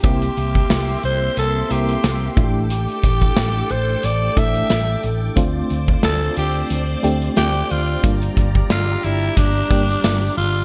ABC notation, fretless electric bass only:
X:1
M:4/4
L:1/8
Q:"Swing 16ths" 1/4=90
K:Dm
V:1 name="Fretless electric bass" clef=bass
C,, C,, C,, C,, C,, C,, C,, A,,,- | A,,, A,,, A,,, A,,, A,,, A,,, A,,, A,,, | D,, D,, D,, D,, D,, D,, D,, D,, | G,,, G,,, G,,, G,,, G,,, G,,, G,,, G,,, |]